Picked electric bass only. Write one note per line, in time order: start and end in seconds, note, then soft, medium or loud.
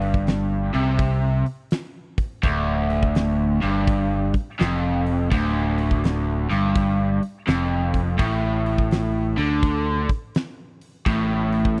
0.00 0.70 G1 medium
0.75 1.43 C2 medium
2.44 3.59 D1 medium
3.64 4.31 G1 medium
4.61 5.28 F1 medium
5.32 6.47 D1 medium
6.51 7.19 G1 medium
7.48 8.16 F1 medium
8.20 9.34 A1 medium
9.38 10.06 D2 medium
11.07 11.80 A1 medium